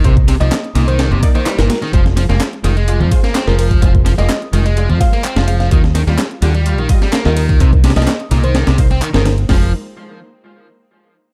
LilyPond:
<<
  \new Staff \with { instrumentName = "FM electric piano" } { \time 4/4 \key f \dorian \tempo 4 = 127 r8. ees''4 c''16 r4 r16 bes'16 bes'16 r16 | r2. r16 bes'16 bes'16 r16 | r8. ees''4 r8. f''4 f''16 f''16 | r2. r16 bes'16 bes'16 r16 |
r8. ees''4 c''16 r4 r16 bes'16 bes'16 r16 | r1 | }
  \new Staff \with { instrumentName = "Synth stab" } { \time 4/4 \key f \dorian <bes ees' c''>16 r8 <bes ees' d''>16 r8 <bes ees' ees''>16 r16 <bes ees' d''>8 <bes ees' d''>16 <bes ees' c''>16 r16 <bes ees' bes'>8. | <aes f' c''>16 r8 <aes f' d''>16 r8 <aes f' ees''>16 r16 <aes f' d''>8 <aes f' c''>16 r8 <aes f' c''>8. | <aes f' c''>16 r8 <aes f' d''>16 r8 <aes f' ees''>16 r16 <aes f' d''>8 <aes f' c''>16 r8 <aes f' c''>8. | <g f' ees''>16 r8 <g f' f''>16 r8 <g f' g''>16 r16 <g f' f''>8 <g f' ees''>16 r8 <g f' ees''>8. |
<bes ees' c''>16 r8 <bes ees' d''>16 r8 <bes ees' ees''>16 r16 <bes ees' d''>8 <bes ees' c''>16 r8 <bes ees' c''>8. | <aes f' c''>8 r2. r8 | }
  \new Staff \with { instrumentName = "Overdriven electric guitar" } { \clef bass \time 4/4 \key f \dorian c16 r16 c16 f16 r8 bes,16 ees8 c16 r16 ees16 g16 bes,16 r16 ees16 | f16 r16 f16 bes16 r8 ees16 aes8 f16 r16 bes16 c'16 f8. | f16 r16 f16 bes16 r8 ees16 aes8 f16 r16 bes16 c'16 f8. | ees16 r16 ees16 g16 r8 d16 g8 ees16 r16 g16 bes16 ees8. |
c16 r16 c16 f16 r8 bes,16 ees8 c16 r16 c'16 ees16 ees16 r8 | f8 r2. r8 | }
  \new Staff \with { instrumentName = "Fingered electric bass" } { \clef bass \time 4/4 \key f \dorian c,8. c,16 r8 c,8. g,,16 r8. g,,16 r8 | f,,8. f,,16 r8 f,,8. f,16 r8. f,,8. | f,,8. f,,16 r8 f,,8. f,16 r8. f,,8. | ees,8. ees,16 r8 ees,8. bes,,16 r8. ees,8. |
c,8. c,16 r8 c,8. c,8. r16 g,,8. | f,,8 r2. r8 | }
  \new DrumStaff \with { instrumentName = "Drums" } \drummode { \time 4/4 <hh bd>16 <hh bd>16 <hh cymr sn>16 hh16 <hc hh sn>16 hh16 <hh cymr sn>16 hh16 <hh sn>16 hh16 <hh bd cymr>16 hh16 <hc hh sn>16 <hh sn>16 <hh cymr sn>16 <hh sn>16 | <hh bd>16 <hh sn>16 <hh cymr sn>16 <hh sn>16 <hc hh sn>16 hh16 <hh cymr sn>16 hh16 hh16 hh16 <hh bd cymr>16 <hh sn>16 <hc hh sn>16 <hh sn>16 <hh hho cymr>16 <hh bd>16 | <hh bd>16 <hh bd>16 <hh cymr sn>16 hh16 <hc hh sn>16 hh16 <hh cymr>16 hh16 hh16 hh16 <hh bd cymr>16 hh16 <hc hh>16 <hh sn>16 <hh cymr>16 <hh sn>16 | <hh bd>16 <hh sn>16 <hh cymr sn>16 <hh sn>16 <hc hh sn>16 hh16 <hh cymr sn>16 hh16 hh16 hh16 <hh bd cymr>16 <hh sn>16 <hc hh sn>16 <hh sn>16 <hh hho cymr>16 <hh bd>16 |
<hh bd>16 <hh bd>16 <hh cymr sn>32 <hh sn>32 <hh sn>32 <hh sn>32 <hc hh sn>16 hh16 <hh cymr sn>16 hh16 <hh sn>16 <hh sn>16 <hh bd cymr>16 hh16 <hc hh>16 <hh sn>16 <hh cymr sn>16 hh16 | <hho bd sn>4 r4 r4 r4 | }
>>